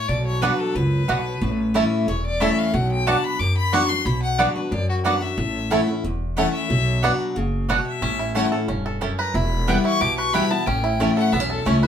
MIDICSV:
0, 0, Header, 1, 6, 480
1, 0, Start_track
1, 0, Tempo, 330761
1, 134, Time_signature, 4, 2, 24, 8
1, 17226, End_track
2, 0, Start_track
2, 0, Title_t, "Fiddle"
2, 0, Program_c, 0, 110
2, 0, Note_on_c, 0, 73, 96
2, 127, Note_on_c, 0, 74, 88
2, 149, Note_off_c, 0, 73, 0
2, 372, Note_off_c, 0, 74, 0
2, 380, Note_on_c, 0, 73, 101
2, 605, Note_on_c, 0, 71, 87
2, 627, Note_off_c, 0, 73, 0
2, 860, Note_on_c, 0, 69, 98
2, 882, Note_off_c, 0, 71, 0
2, 1094, Note_on_c, 0, 71, 93
2, 1116, Note_off_c, 0, 69, 0
2, 2532, Note_off_c, 0, 71, 0
2, 3018, Note_on_c, 0, 73, 82
2, 3243, Note_off_c, 0, 73, 0
2, 3282, Note_on_c, 0, 74, 101
2, 3497, Note_on_c, 0, 76, 89
2, 3519, Note_off_c, 0, 74, 0
2, 3757, Note_on_c, 0, 77, 91
2, 3778, Note_off_c, 0, 76, 0
2, 3976, Note_on_c, 0, 78, 86
2, 3997, Note_off_c, 0, 77, 0
2, 4218, Note_off_c, 0, 78, 0
2, 4230, Note_on_c, 0, 79, 103
2, 4457, Note_on_c, 0, 81, 91
2, 4479, Note_off_c, 0, 79, 0
2, 4701, Note_on_c, 0, 83, 106
2, 4723, Note_off_c, 0, 81, 0
2, 4929, Note_on_c, 0, 86, 109
2, 4950, Note_off_c, 0, 83, 0
2, 5174, Note_off_c, 0, 86, 0
2, 5183, Note_on_c, 0, 83, 109
2, 5415, Note_on_c, 0, 85, 120
2, 5437, Note_off_c, 0, 83, 0
2, 5648, Note_on_c, 0, 84, 109
2, 5670, Note_off_c, 0, 85, 0
2, 5883, Note_on_c, 0, 83, 93
2, 5905, Note_off_c, 0, 84, 0
2, 6122, Note_off_c, 0, 83, 0
2, 6130, Note_on_c, 0, 78, 107
2, 6369, Note_on_c, 0, 74, 89
2, 6391, Note_off_c, 0, 78, 0
2, 6608, Note_off_c, 0, 74, 0
2, 6617, Note_on_c, 0, 71, 54
2, 6847, Note_on_c, 0, 74, 104
2, 6869, Note_off_c, 0, 71, 0
2, 7092, Note_off_c, 0, 74, 0
2, 7098, Note_on_c, 0, 66, 88
2, 7237, Note_off_c, 0, 66, 0
2, 7333, Note_on_c, 0, 78, 86
2, 7573, Note_on_c, 0, 76, 89
2, 7595, Note_off_c, 0, 78, 0
2, 8288, Note_on_c, 0, 78, 80
2, 8310, Note_off_c, 0, 76, 0
2, 8532, Note_off_c, 0, 78, 0
2, 9243, Note_on_c, 0, 78, 105
2, 9472, Note_off_c, 0, 78, 0
2, 9486, Note_on_c, 0, 76, 109
2, 10210, Note_on_c, 0, 78, 88
2, 10232, Note_off_c, 0, 76, 0
2, 10452, Note_off_c, 0, 78, 0
2, 11178, Note_on_c, 0, 78, 85
2, 11399, Note_off_c, 0, 78, 0
2, 11421, Note_on_c, 0, 76, 100
2, 12081, Note_off_c, 0, 76, 0
2, 12132, Note_on_c, 0, 78, 97
2, 12277, Note_off_c, 0, 78, 0
2, 13335, Note_on_c, 0, 82, 91
2, 13577, Note_on_c, 0, 83, 97
2, 13599, Note_off_c, 0, 82, 0
2, 14286, Note_off_c, 0, 83, 0
2, 14295, Note_on_c, 0, 85, 114
2, 14529, Note_on_c, 0, 86, 118
2, 14551, Note_off_c, 0, 85, 0
2, 14762, Note_off_c, 0, 86, 0
2, 14771, Note_on_c, 0, 85, 110
2, 15003, Note_on_c, 0, 83, 115
2, 15025, Note_off_c, 0, 85, 0
2, 15251, Note_on_c, 0, 81, 110
2, 15273, Note_off_c, 0, 83, 0
2, 15475, Note_on_c, 0, 79, 99
2, 15497, Note_off_c, 0, 81, 0
2, 16204, Note_off_c, 0, 79, 0
2, 16212, Note_on_c, 0, 78, 104
2, 16440, Note_on_c, 0, 76, 91
2, 16462, Note_off_c, 0, 78, 0
2, 16690, Note_off_c, 0, 76, 0
2, 16700, Note_on_c, 0, 69, 80
2, 16937, Note_on_c, 0, 73, 91
2, 16958, Note_off_c, 0, 69, 0
2, 17168, Note_off_c, 0, 73, 0
2, 17177, Note_on_c, 0, 76, 92
2, 17226, Note_off_c, 0, 76, 0
2, 17226, End_track
3, 0, Start_track
3, 0, Title_t, "Mandolin"
3, 0, Program_c, 1, 25
3, 611, Note_on_c, 1, 59, 100
3, 614, Note_on_c, 1, 66, 105
3, 620, Note_on_c, 1, 74, 93
3, 624, Note_on_c, 1, 78, 109
3, 745, Note_off_c, 1, 59, 0
3, 746, Note_off_c, 1, 66, 0
3, 749, Note_off_c, 1, 74, 0
3, 751, Note_off_c, 1, 78, 0
3, 1567, Note_on_c, 1, 59, 84
3, 1574, Note_on_c, 1, 66, 77
3, 1577, Note_on_c, 1, 74, 82
3, 1581, Note_on_c, 1, 78, 96
3, 1703, Note_off_c, 1, 59, 0
3, 1706, Note_off_c, 1, 66, 0
3, 1707, Note_off_c, 1, 74, 0
3, 1709, Note_off_c, 1, 78, 0
3, 2533, Note_on_c, 1, 57, 89
3, 2537, Note_on_c, 1, 64, 104
3, 2542, Note_on_c, 1, 73, 104
3, 2545, Note_on_c, 1, 81, 98
3, 2665, Note_off_c, 1, 57, 0
3, 2667, Note_off_c, 1, 64, 0
3, 2670, Note_off_c, 1, 73, 0
3, 2671, Note_off_c, 1, 81, 0
3, 3484, Note_on_c, 1, 57, 89
3, 3488, Note_on_c, 1, 64, 88
3, 3494, Note_on_c, 1, 73, 88
3, 3496, Note_on_c, 1, 81, 94
3, 3620, Note_off_c, 1, 57, 0
3, 3622, Note_off_c, 1, 64, 0
3, 3625, Note_off_c, 1, 73, 0
3, 3626, Note_off_c, 1, 81, 0
3, 4450, Note_on_c, 1, 59, 87
3, 4456, Note_on_c, 1, 66, 105
3, 4458, Note_on_c, 1, 74, 105
3, 4461, Note_on_c, 1, 78, 107
3, 4583, Note_off_c, 1, 59, 0
3, 4586, Note_off_c, 1, 66, 0
3, 4587, Note_off_c, 1, 74, 0
3, 4589, Note_off_c, 1, 78, 0
3, 5404, Note_on_c, 1, 59, 89
3, 5410, Note_on_c, 1, 66, 86
3, 5414, Note_on_c, 1, 74, 95
3, 5417, Note_on_c, 1, 78, 105
3, 5539, Note_off_c, 1, 59, 0
3, 5543, Note_off_c, 1, 66, 0
3, 5544, Note_off_c, 1, 74, 0
3, 5546, Note_off_c, 1, 78, 0
3, 6361, Note_on_c, 1, 59, 91
3, 6367, Note_on_c, 1, 66, 95
3, 6368, Note_on_c, 1, 74, 92
3, 6373, Note_on_c, 1, 78, 98
3, 6497, Note_off_c, 1, 59, 0
3, 6501, Note_off_c, 1, 66, 0
3, 6501, Note_off_c, 1, 74, 0
3, 6503, Note_off_c, 1, 78, 0
3, 7319, Note_on_c, 1, 59, 86
3, 7325, Note_on_c, 1, 66, 94
3, 7330, Note_on_c, 1, 74, 106
3, 7334, Note_on_c, 1, 78, 100
3, 7456, Note_off_c, 1, 59, 0
3, 7459, Note_off_c, 1, 66, 0
3, 7462, Note_off_c, 1, 74, 0
3, 7464, Note_off_c, 1, 78, 0
3, 8282, Note_on_c, 1, 57, 98
3, 8286, Note_on_c, 1, 64, 101
3, 8293, Note_on_c, 1, 73, 99
3, 8295, Note_on_c, 1, 81, 108
3, 8417, Note_off_c, 1, 57, 0
3, 8419, Note_off_c, 1, 64, 0
3, 8422, Note_off_c, 1, 73, 0
3, 8424, Note_off_c, 1, 81, 0
3, 9240, Note_on_c, 1, 57, 89
3, 9248, Note_on_c, 1, 64, 79
3, 9252, Note_on_c, 1, 73, 103
3, 9255, Note_on_c, 1, 81, 101
3, 9376, Note_off_c, 1, 57, 0
3, 9380, Note_off_c, 1, 64, 0
3, 9382, Note_off_c, 1, 73, 0
3, 9383, Note_off_c, 1, 81, 0
3, 10195, Note_on_c, 1, 59, 98
3, 10198, Note_on_c, 1, 66, 97
3, 10204, Note_on_c, 1, 74, 93
3, 10209, Note_on_c, 1, 78, 103
3, 10333, Note_off_c, 1, 59, 0
3, 10335, Note_off_c, 1, 66, 0
3, 10337, Note_off_c, 1, 74, 0
3, 10340, Note_off_c, 1, 78, 0
3, 11155, Note_on_c, 1, 59, 94
3, 11161, Note_on_c, 1, 66, 90
3, 11164, Note_on_c, 1, 74, 97
3, 11168, Note_on_c, 1, 78, 94
3, 11293, Note_off_c, 1, 59, 0
3, 11296, Note_off_c, 1, 66, 0
3, 11298, Note_off_c, 1, 74, 0
3, 11300, Note_off_c, 1, 78, 0
3, 12114, Note_on_c, 1, 57, 95
3, 12120, Note_on_c, 1, 64, 98
3, 12124, Note_on_c, 1, 73, 93
3, 12129, Note_on_c, 1, 81, 109
3, 12253, Note_off_c, 1, 57, 0
3, 12256, Note_off_c, 1, 64, 0
3, 12258, Note_off_c, 1, 73, 0
3, 12260, Note_off_c, 1, 81, 0
3, 13075, Note_on_c, 1, 57, 93
3, 13079, Note_on_c, 1, 64, 82
3, 13086, Note_on_c, 1, 73, 90
3, 13088, Note_on_c, 1, 81, 79
3, 13213, Note_off_c, 1, 57, 0
3, 13216, Note_off_c, 1, 64, 0
3, 13219, Note_off_c, 1, 73, 0
3, 13220, Note_off_c, 1, 81, 0
3, 14044, Note_on_c, 1, 59, 104
3, 14048, Note_on_c, 1, 64, 86
3, 14053, Note_on_c, 1, 71, 90
3, 14057, Note_on_c, 1, 79, 104
3, 14178, Note_off_c, 1, 59, 0
3, 14181, Note_off_c, 1, 64, 0
3, 14183, Note_off_c, 1, 71, 0
3, 14185, Note_off_c, 1, 79, 0
3, 15003, Note_on_c, 1, 59, 85
3, 15007, Note_on_c, 1, 64, 93
3, 15012, Note_on_c, 1, 71, 86
3, 15017, Note_on_c, 1, 79, 104
3, 15138, Note_off_c, 1, 59, 0
3, 15140, Note_off_c, 1, 64, 0
3, 15143, Note_off_c, 1, 71, 0
3, 15145, Note_off_c, 1, 79, 0
3, 15963, Note_on_c, 1, 57, 96
3, 15969, Note_on_c, 1, 64, 106
3, 15972, Note_on_c, 1, 73, 99
3, 15976, Note_on_c, 1, 81, 100
3, 16099, Note_off_c, 1, 57, 0
3, 16102, Note_off_c, 1, 64, 0
3, 16104, Note_off_c, 1, 73, 0
3, 16105, Note_off_c, 1, 81, 0
3, 16924, Note_on_c, 1, 57, 83
3, 16928, Note_on_c, 1, 64, 90
3, 16934, Note_on_c, 1, 73, 95
3, 16938, Note_on_c, 1, 81, 95
3, 17060, Note_off_c, 1, 57, 0
3, 17062, Note_off_c, 1, 64, 0
3, 17065, Note_off_c, 1, 73, 0
3, 17067, Note_off_c, 1, 81, 0
3, 17226, End_track
4, 0, Start_track
4, 0, Title_t, "Five-string banjo"
4, 0, Program_c, 2, 105
4, 623, Note_on_c, 2, 59, 64
4, 630, Note_on_c, 2, 66, 60
4, 659, Note_off_c, 2, 66, 0
4, 726, Note_off_c, 2, 59, 0
4, 1582, Note_on_c, 2, 59, 64
4, 1589, Note_on_c, 2, 66, 71
4, 1618, Note_off_c, 2, 66, 0
4, 1685, Note_off_c, 2, 59, 0
4, 2545, Note_on_c, 2, 61, 64
4, 2552, Note_on_c, 2, 64, 63
4, 2554, Note_on_c, 2, 69, 57
4, 2646, Note_off_c, 2, 61, 0
4, 2648, Note_off_c, 2, 64, 0
4, 2651, Note_off_c, 2, 69, 0
4, 3504, Note_on_c, 2, 61, 58
4, 3509, Note_on_c, 2, 64, 70
4, 3513, Note_on_c, 2, 69, 62
4, 3606, Note_off_c, 2, 61, 0
4, 3607, Note_off_c, 2, 64, 0
4, 3609, Note_off_c, 2, 69, 0
4, 4457, Note_on_c, 2, 59, 58
4, 4464, Note_on_c, 2, 66, 66
4, 4493, Note_off_c, 2, 66, 0
4, 4561, Note_off_c, 2, 59, 0
4, 5415, Note_on_c, 2, 59, 68
4, 5421, Note_on_c, 2, 66, 70
4, 5450, Note_off_c, 2, 66, 0
4, 5520, Note_off_c, 2, 59, 0
4, 6374, Note_on_c, 2, 59, 69
4, 6386, Note_on_c, 2, 66, 66
4, 6415, Note_off_c, 2, 66, 0
4, 6480, Note_off_c, 2, 59, 0
4, 7335, Note_on_c, 2, 59, 73
4, 7345, Note_on_c, 2, 66, 67
4, 7374, Note_off_c, 2, 66, 0
4, 7440, Note_off_c, 2, 59, 0
4, 8296, Note_on_c, 2, 61, 67
4, 8299, Note_on_c, 2, 64, 66
4, 8305, Note_on_c, 2, 69, 68
4, 8399, Note_off_c, 2, 61, 0
4, 8400, Note_off_c, 2, 64, 0
4, 8403, Note_off_c, 2, 69, 0
4, 9259, Note_on_c, 2, 61, 71
4, 9263, Note_on_c, 2, 64, 67
4, 9273, Note_on_c, 2, 69, 65
4, 9360, Note_off_c, 2, 61, 0
4, 9363, Note_off_c, 2, 64, 0
4, 9365, Note_off_c, 2, 69, 0
4, 10217, Note_on_c, 2, 59, 72
4, 10224, Note_on_c, 2, 66, 61
4, 10253, Note_off_c, 2, 66, 0
4, 10319, Note_off_c, 2, 59, 0
4, 11173, Note_on_c, 2, 59, 70
4, 11183, Note_on_c, 2, 66, 70
4, 11212, Note_off_c, 2, 66, 0
4, 11277, Note_off_c, 2, 59, 0
4, 11642, Note_on_c, 2, 61, 77
4, 11890, Note_on_c, 2, 64, 60
4, 12106, Note_off_c, 2, 61, 0
4, 12123, Note_on_c, 2, 61, 53
4, 12362, Note_on_c, 2, 69, 59
4, 12584, Note_off_c, 2, 61, 0
4, 12602, Note_on_c, 2, 61, 69
4, 12836, Note_off_c, 2, 69, 0
4, 12854, Note_on_c, 2, 69, 59
4, 13071, Note_off_c, 2, 61, 0
4, 13089, Note_on_c, 2, 61, 68
4, 13333, Note_on_c, 2, 71, 64
4, 13521, Note_off_c, 2, 69, 0
4, 13562, Note_off_c, 2, 64, 0
4, 13567, Note_off_c, 2, 71, 0
4, 13568, Note_off_c, 2, 61, 0
4, 13568, Note_on_c, 2, 64, 63
4, 14050, Note_on_c, 2, 59, 59
4, 14287, Note_off_c, 2, 64, 0
4, 14293, Note_on_c, 2, 64, 62
4, 14531, Note_on_c, 2, 67, 71
4, 14725, Note_off_c, 2, 59, 0
4, 14775, Note_on_c, 2, 71, 57
4, 14961, Note_off_c, 2, 64, 0
4, 15005, Note_on_c, 2, 64, 57
4, 15206, Note_off_c, 2, 67, 0
4, 15254, Note_on_c, 2, 59, 59
4, 15443, Note_off_c, 2, 71, 0
4, 15484, Note_off_c, 2, 59, 0
4, 15487, Note_off_c, 2, 64, 0
4, 15489, Note_on_c, 2, 61, 77
4, 15728, Note_on_c, 2, 64, 58
4, 15948, Note_off_c, 2, 61, 0
4, 15966, Note_on_c, 2, 61, 62
4, 16209, Note_on_c, 2, 69, 62
4, 16399, Note_off_c, 2, 64, 0
4, 16438, Note_off_c, 2, 61, 0
4, 16444, Note_on_c, 2, 59, 73
4, 16542, Note_off_c, 2, 59, 0
4, 16542, Note_on_c, 2, 61, 73
4, 16680, Note_off_c, 2, 69, 0
4, 16686, Note_on_c, 2, 69, 61
4, 16907, Note_off_c, 2, 61, 0
4, 16925, Note_on_c, 2, 61, 72
4, 17167, Note_on_c, 2, 71, 63
4, 17226, Note_off_c, 2, 61, 0
4, 17226, Note_off_c, 2, 69, 0
4, 17226, Note_off_c, 2, 71, 0
4, 17226, End_track
5, 0, Start_track
5, 0, Title_t, "Steel-string acoustic guitar"
5, 0, Program_c, 3, 25
5, 131, Note_on_c, 3, 47, 84
5, 602, Note_on_c, 3, 54, 85
5, 613, Note_on_c, 3, 59, 107
5, 619, Note_on_c, 3, 62, 108
5, 629, Note_on_c, 3, 66, 96
5, 1045, Note_off_c, 3, 47, 0
5, 1064, Note_off_c, 3, 54, 0
5, 1069, Note_off_c, 3, 59, 0
5, 1072, Note_off_c, 3, 62, 0
5, 1077, Note_off_c, 3, 66, 0
5, 1095, Note_on_c, 3, 42, 92
5, 1550, Note_off_c, 3, 42, 0
5, 1576, Note_on_c, 3, 47, 97
5, 2030, Note_off_c, 3, 47, 0
5, 2053, Note_on_c, 3, 45, 86
5, 2527, Note_on_c, 3, 52, 92
5, 2534, Note_on_c, 3, 57, 98
5, 2544, Note_on_c, 3, 61, 105
5, 2550, Note_on_c, 3, 64, 105
5, 2965, Note_off_c, 3, 45, 0
5, 2985, Note_off_c, 3, 52, 0
5, 2989, Note_off_c, 3, 57, 0
5, 2994, Note_off_c, 3, 61, 0
5, 2997, Note_off_c, 3, 64, 0
5, 3018, Note_on_c, 3, 40, 97
5, 3485, Note_on_c, 3, 52, 95
5, 3497, Note_on_c, 3, 57, 89
5, 3503, Note_on_c, 3, 61, 107
5, 3510, Note_on_c, 3, 64, 99
5, 3927, Note_off_c, 3, 40, 0
5, 3944, Note_off_c, 3, 52, 0
5, 3950, Note_off_c, 3, 57, 0
5, 3953, Note_off_c, 3, 61, 0
5, 3957, Note_off_c, 3, 64, 0
5, 3970, Note_on_c, 3, 47, 86
5, 4452, Note_on_c, 3, 54, 89
5, 4459, Note_on_c, 3, 59, 96
5, 4470, Note_on_c, 3, 62, 89
5, 4472, Note_on_c, 3, 66, 91
5, 4883, Note_off_c, 3, 47, 0
5, 4907, Note_off_c, 3, 54, 0
5, 4911, Note_off_c, 3, 59, 0
5, 4916, Note_off_c, 3, 62, 0
5, 4917, Note_off_c, 3, 66, 0
5, 4937, Note_on_c, 3, 42, 97
5, 5408, Note_on_c, 3, 54, 83
5, 5418, Note_on_c, 3, 59, 96
5, 5425, Note_on_c, 3, 62, 99
5, 5436, Note_on_c, 3, 66, 107
5, 5641, Note_off_c, 3, 66, 0
5, 5644, Note_off_c, 3, 54, 0
5, 5648, Note_off_c, 3, 59, 0
5, 5652, Note_off_c, 3, 62, 0
5, 5658, Note_on_c, 3, 66, 63
5, 5685, Note_on_c, 3, 62, 52
5, 5845, Note_off_c, 3, 42, 0
5, 5881, Note_off_c, 3, 66, 0
5, 5895, Note_off_c, 3, 62, 0
5, 5897, Note_on_c, 3, 47, 94
5, 6368, Note_on_c, 3, 54, 84
5, 6377, Note_on_c, 3, 59, 97
5, 6386, Note_on_c, 3, 62, 102
5, 6393, Note_on_c, 3, 66, 92
5, 6594, Note_off_c, 3, 66, 0
5, 6603, Note_off_c, 3, 54, 0
5, 6607, Note_off_c, 3, 59, 0
5, 6611, Note_on_c, 3, 66, 71
5, 6612, Note_off_c, 3, 62, 0
5, 6635, Note_on_c, 3, 62, 52
5, 6805, Note_off_c, 3, 47, 0
5, 6837, Note_off_c, 3, 66, 0
5, 6846, Note_on_c, 3, 42, 101
5, 6849, Note_off_c, 3, 62, 0
5, 7322, Note_on_c, 3, 54, 81
5, 7334, Note_on_c, 3, 59, 98
5, 7343, Note_on_c, 3, 62, 91
5, 7350, Note_on_c, 3, 66, 98
5, 7540, Note_off_c, 3, 66, 0
5, 7557, Note_on_c, 3, 66, 64
5, 7560, Note_off_c, 3, 54, 0
5, 7566, Note_off_c, 3, 59, 0
5, 7570, Note_off_c, 3, 62, 0
5, 7585, Note_on_c, 3, 62, 52
5, 7759, Note_off_c, 3, 42, 0
5, 7790, Note_off_c, 3, 66, 0
5, 7801, Note_on_c, 3, 45, 82
5, 7804, Note_off_c, 3, 62, 0
5, 8276, Note_on_c, 3, 52, 102
5, 8286, Note_on_c, 3, 57, 89
5, 8290, Note_on_c, 3, 61, 96
5, 8298, Note_on_c, 3, 64, 107
5, 8502, Note_off_c, 3, 64, 0
5, 8516, Note_off_c, 3, 52, 0
5, 8520, Note_on_c, 3, 64, 73
5, 8521, Note_off_c, 3, 57, 0
5, 8523, Note_off_c, 3, 61, 0
5, 8543, Note_on_c, 3, 61, 59
5, 8716, Note_off_c, 3, 45, 0
5, 8751, Note_off_c, 3, 64, 0
5, 8763, Note_off_c, 3, 61, 0
5, 8771, Note_on_c, 3, 40, 91
5, 9239, Note_on_c, 3, 52, 93
5, 9247, Note_on_c, 3, 57, 94
5, 9255, Note_on_c, 3, 61, 97
5, 9261, Note_on_c, 3, 64, 118
5, 9681, Note_off_c, 3, 40, 0
5, 9698, Note_off_c, 3, 52, 0
5, 9702, Note_off_c, 3, 57, 0
5, 9707, Note_off_c, 3, 61, 0
5, 9710, Note_off_c, 3, 64, 0
5, 9724, Note_on_c, 3, 47, 83
5, 10197, Note_on_c, 3, 54, 83
5, 10208, Note_on_c, 3, 59, 100
5, 10218, Note_on_c, 3, 62, 94
5, 10228, Note_on_c, 3, 66, 115
5, 10637, Note_off_c, 3, 47, 0
5, 10657, Note_off_c, 3, 54, 0
5, 10663, Note_off_c, 3, 59, 0
5, 10668, Note_off_c, 3, 62, 0
5, 10673, Note_off_c, 3, 66, 0
5, 10679, Note_on_c, 3, 49, 96
5, 11139, Note_off_c, 3, 49, 0
5, 11167, Note_on_c, 3, 47, 100
5, 11623, Note_off_c, 3, 47, 0
5, 11641, Note_on_c, 3, 45, 85
5, 12121, Note_on_c, 3, 52, 83
5, 12130, Note_on_c, 3, 57, 90
5, 12138, Note_on_c, 3, 61, 93
5, 12143, Note_on_c, 3, 64, 94
5, 12347, Note_off_c, 3, 64, 0
5, 12358, Note_off_c, 3, 52, 0
5, 12363, Note_off_c, 3, 57, 0
5, 12364, Note_on_c, 3, 64, 71
5, 12367, Note_off_c, 3, 61, 0
5, 12390, Note_on_c, 3, 61, 53
5, 12556, Note_off_c, 3, 45, 0
5, 12593, Note_off_c, 3, 64, 0
5, 12604, Note_on_c, 3, 43, 88
5, 12606, Note_off_c, 3, 61, 0
5, 13062, Note_off_c, 3, 43, 0
5, 13081, Note_on_c, 3, 42, 92
5, 13540, Note_off_c, 3, 42, 0
5, 13566, Note_on_c, 3, 40, 85
5, 14037, Note_on_c, 3, 52, 93
5, 14047, Note_on_c, 3, 55, 91
5, 14057, Note_on_c, 3, 59, 102
5, 14064, Note_on_c, 3, 64, 100
5, 14480, Note_off_c, 3, 40, 0
5, 14499, Note_off_c, 3, 52, 0
5, 14504, Note_off_c, 3, 55, 0
5, 14509, Note_off_c, 3, 59, 0
5, 14512, Note_off_c, 3, 64, 0
5, 14522, Note_on_c, 3, 47, 97
5, 14993, Note_on_c, 3, 52, 84
5, 15005, Note_on_c, 3, 55, 89
5, 15013, Note_on_c, 3, 59, 96
5, 15022, Note_on_c, 3, 64, 107
5, 15231, Note_off_c, 3, 64, 0
5, 15236, Note_off_c, 3, 52, 0
5, 15242, Note_off_c, 3, 55, 0
5, 15246, Note_off_c, 3, 59, 0
5, 15249, Note_on_c, 3, 64, 65
5, 15272, Note_on_c, 3, 59, 48
5, 15438, Note_off_c, 3, 47, 0
5, 15477, Note_off_c, 3, 64, 0
5, 15488, Note_off_c, 3, 59, 0
5, 15488, Note_on_c, 3, 45, 85
5, 15962, Note_on_c, 3, 52, 89
5, 15967, Note_on_c, 3, 57, 89
5, 15977, Note_on_c, 3, 61, 93
5, 15984, Note_on_c, 3, 64, 95
5, 16402, Note_off_c, 3, 45, 0
5, 16422, Note_off_c, 3, 52, 0
5, 16425, Note_off_c, 3, 57, 0
5, 16430, Note_off_c, 3, 61, 0
5, 16434, Note_off_c, 3, 64, 0
5, 16442, Note_on_c, 3, 40, 86
5, 16911, Note_on_c, 3, 52, 94
5, 16923, Note_on_c, 3, 57, 97
5, 16931, Note_on_c, 3, 61, 95
5, 16936, Note_on_c, 3, 64, 99
5, 17153, Note_off_c, 3, 64, 0
5, 17156, Note_off_c, 3, 52, 0
5, 17162, Note_off_c, 3, 57, 0
5, 17166, Note_off_c, 3, 61, 0
5, 17171, Note_on_c, 3, 64, 62
5, 17226, Note_off_c, 3, 40, 0
5, 17226, Note_off_c, 3, 64, 0
5, 17226, End_track
6, 0, Start_track
6, 0, Title_t, "Upright bass"
6, 0, Program_c, 4, 32
6, 126, Note_on_c, 4, 35, 106
6, 704, Note_off_c, 4, 35, 0
6, 1089, Note_on_c, 4, 37, 89
6, 1498, Note_off_c, 4, 37, 0
6, 1578, Note_on_c, 4, 35, 88
6, 1983, Note_off_c, 4, 35, 0
6, 2055, Note_on_c, 4, 33, 110
6, 2630, Note_off_c, 4, 33, 0
6, 3013, Note_on_c, 4, 28, 75
6, 3588, Note_off_c, 4, 28, 0
6, 3975, Note_on_c, 4, 35, 115
6, 4550, Note_off_c, 4, 35, 0
6, 4928, Note_on_c, 4, 42, 80
6, 5504, Note_off_c, 4, 42, 0
6, 5883, Note_on_c, 4, 35, 112
6, 6461, Note_off_c, 4, 35, 0
6, 6842, Note_on_c, 4, 42, 94
6, 7420, Note_off_c, 4, 42, 0
6, 7801, Note_on_c, 4, 33, 114
6, 8379, Note_off_c, 4, 33, 0
6, 8763, Note_on_c, 4, 28, 81
6, 9340, Note_off_c, 4, 28, 0
6, 9723, Note_on_c, 4, 35, 121
6, 10300, Note_off_c, 4, 35, 0
6, 10684, Note_on_c, 4, 30, 86
6, 11261, Note_off_c, 4, 30, 0
6, 11639, Note_on_c, 4, 33, 116
6, 12217, Note_off_c, 4, 33, 0
6, 12595, Note_on_c, 4, 28, 80
6, 13175, Note_off_c, 4, 28, 0
6, 13557, Note_on_c, 4, 28, 113
6, 14137, Note_off_c, 4, 28, 0
6, 14524, Note_on_c, 4, 35, 84
6, 15102, Note_off_c, 4, 35, 0
6, 15483, Note_on_c, 4, 33, 107
6, 16062, Note_off_c, 4, 33, 0
6, 16438, Note_on_c, 4, 35, 84
6, 16851, Note_off_c, 4, 35, 0
6, 16920, Note_on_c, 4, 37, 83
6, 17226, Note_off_c, 4, 37, 0
6, 17226, End_track
0, 0, End_of_file